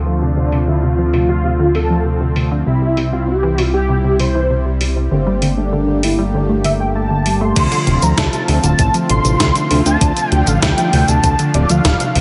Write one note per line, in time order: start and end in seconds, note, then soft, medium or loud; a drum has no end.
0.00 2.64 D2 medium
0.00 2.63 D3 medium
0.00 2.63 F3 medium
0.00 2.63 A3 medium
0.00 5.08 C4 medium
0.00 2.63 F4 medium
0.06 0.15 F3 medium
0.22 0.31 C3 medium
0.22 0.69 D4 medium
0.37 0.46 C3 medium
0.52 0.66 C3 medium
0.52 open hi-hat medium
0.68 0.77 D3 loud
0.68 0.84 E4 medium
0.83 0.92 C3 medium
0.83 1.28 F4 loud
0.98 1.07 F3 medium
1.14 1.22 C3 medium
1.14 open hi-hat medium
1.29 1.38 C3 medium
1.29 1.72 F4 loud
1.44 1.57 C3 medium
1.59 1.68 D3 loud
1.75 1.84 C3 medium
1.75 2.32 A4 loud
1.75 open hi-hat medium
1.90 1.99 F3 medium
2.05 2.14 C3 medium
2.21 2.30 C3 medium
2.36 2.49 C3 medium
2.36 open hi-hat medium
2.51 2.60 D3 loud
2.67 5.08 C2 medium
2.67 2.76 C3 medium
2.67 7.52 G3 medium
2.67 5.09 E4 medium
2.67 3.09 E4 medium
2.82 2.91 G3 medium
2.97 3.06 C3 medium
2.97 open hi-hat medium
3.12 3.21 C3 medium
3.12 3.27 F4 medium
3.28 3.41 C3 medium
3.28 3.71 G4 medium
3.43 3.52 E3 loud
3.58 3.67 C3 medium
3.58 open hi-hat medium
3.74 3.83 G3 medium
3.74 4.16 G4 loud
3.89 3.98 C3 medium
4.04 4.13 C3 medium
4.20 4.33 C3 medium
4.20 4.77 C5 loud
4.20 open hi-hat medium
4.35 4.44 E3 loud
4.50 4.59 C3 medium
4.65 4.74 G3 medium
4.81 4.90 C3 medium
4.81 open hi-hat medium
4.96 5.05 C3 medium
5.11 7.53 G1 medium
5.11 5.25 D3 medium
5.11 7.54 D3 medium
5.11 7.54 A3 medium
5.11 7.54 A#3 medium
5.11 5.54 C4 medium
5.11 7.54 G4 medium
5.27 5.36 G3 medium
5.42 5.51 D3 medium
5.42 open hi-hat medium
5.57 5.66 A3 medium
5.57 6.05 D4 loud
5.73 5.82 D3 medium
5.88 5.97 D3 medium
6.03 6.17 D3 medium
6.03 6.33 E4 loud
6.03 open hi-hat medium
6.19 6.28 G3 loud
6.34 6.43 D3 medium
6.34 6.62 D4 medium
6.49 6.58 A3 medium
6.64 6.70 D3 medium
6.64 6.71 E5 medium
6.64 open hi-hat medium
6.80 6.89 A3 medium
6.80 6.87 G5 medium
6.95 7.01 A3 medium
6.95 7.43 A5 medium
7.10 7.24 D3 medium
7.26 7.39 G3 medium
7.26 open hi-hat medium
7.41 7.54 A3 loud
7.41 8.04 C6 loud
7.56 7.68 D2 loud
7.56 7.70 C3 medium
7.56 12.21 D3 medium
7.56 12.21 F3 medium
7.56 12.21 A3 medium
7.56 9.99 C4 medium
7.56 12.21 F4 medium
7.56 kick loud
7.56 closed hi-hat loud
7.56 crash loud
7.56 cabasa medium
7.72 7.81 D3 loud
7.72 closed hi-hat soft
7.72 cabasa soft
7.87 7.98 D1 medium
7.87 7.96 C3 medium
7.87 closed hi-hat soft
8.02 8.14 D2 medium
8.02 8.11 F3 medium
8.02 8.19 A#5 loud
8.02 closed hi-hat soft
8.02 cabasa medium
8.18 8.29 D2 loud
8.18 8.27 C3 medium
8.18 8.63 A5 medium
8.18 kick loud
8.18 snare loud
8.18 closed hi-hat loud
8.18 cabasa soft
8.33 8.42 C3 medium
8.33 closed hi-hat soft
8.33 cabasa soft
8.48 8.60 D2 loud
8.48 8.62 C3 medium
8.48 open hi-hat medium
8.64 8.75 D1 medium
8.64 8.72 D3 loud
8.64 8.78 A5 medium
8.64 closed hi-hat soft
8.64 cabasa medium
8.79 8.90 A1 loud
8.79 8.88 C3 medium
8.79 8.93 A5 medium
8.79 kick loud
8.79 closed hi-hat loud
8.79 cabasa soft
8.94 9.03 F3 medium
8.94 closed hi-hat soft
8.94 cabasa soft
9.09 9.21 A1 medium
9.09 9.18 C3 medium
9.09 9.24 C6 medium
9.09 closed hi-hat medium
9.25 9.36 A1 medium
9.25 9.34 C3 medium
9.25 9.82 C6 loud
9.25 closed hi-hat soft
9.25 cabasa medium
9.40 9.51 D2 loud
9.40 9.53 C3 medium
9.40 kick loud
9.40 snare loud
9.40 closed hi-hat loud
9.40 cabasa soft
9.55 9.64 D3 loud
9.55 closed hi-hat soft
9.55 cabasa soft
9.71 9.82 D2 loud
9.71 9.80 C3 medium
9.71 open hi-hat medium
9.86 9.97 D2 medium
9.86 9.95 F3 medium
9.86 10.30 A5 loud
9.86 closed hi-hat soft
9.86 cabasa medium
10.01 10.13 D2 loud
10.01 10.10 C3 medium
10.01 12.21 D4 medium
10.01 kick loud
10.01 closed hi-hat loud
10.01 cabasa soft
10.17 10.26 C3 medium
10.17 closed hi-hat soft
10.17 cabasa soft
10.30 10.43 D2 loud
10.30 10.45 C3 medium
10.30 10.49 G5 loud
10.30 closed hi-hat soft
10.47 10.59 A1 medium
10.47 10.56 D3 loud
10.47 10.62 F5 medium
10.47 closed hi-hat soft
10.47 cabasa medium
10.62 10.74 D2 loud
10.62 10.72 C3 medium
10.62 11.10 G5 loud
10.62 kick loud
10.62 snare loud
10.62 closed hi-hat loud
10.62 cabasa soft
10.78 10.87 F3 medium
10.78 closed hi-hat soft
10.78 cabasa soft
10.93 11.04 D2 loud
10.93 11.02 C3 medium
10.93 open hi-hat medium
11.08 11.20 D2 medium
11.08 11.17 C3 medium
11.08 11.54 A5 loud
11.08 closed hi-hat soft
11.08 cabasa medium
11.24 11.35 D2 loud
11.24 11.37 C3 medium
11.24 kick loud
11.24 closed hi-hat medium
11.24 cabasa soft
11.39 11.48 D3 loud
11.39 closed hi-hat soft
11.39 cabasa soft
11.54 11.66 D1 medium
11.54 11.63 C3 medium
11.54 11.71 D5 medium
11.54 closed hi-hat medium
11.70 11.81 D2 medium
11.70 11.79 F3 medium
11.70 12.21 F5 loud
11.70 closed hi-hat soft
11.70 cabasa medium
11.85 11.96 D1 loud
11.85 11.94 C3 medium
11.85 kick loud
11.85 snare loud
11.85 closed hi-hat loud
11.85 cabasa soft
12.00 12.09 C3 medium
12.00 closed hi-hat soft
12.00 cabasa soft
12.15 12.21 D1 medium
12.15 12.21 C3 medium
12.15 open hi-hat medium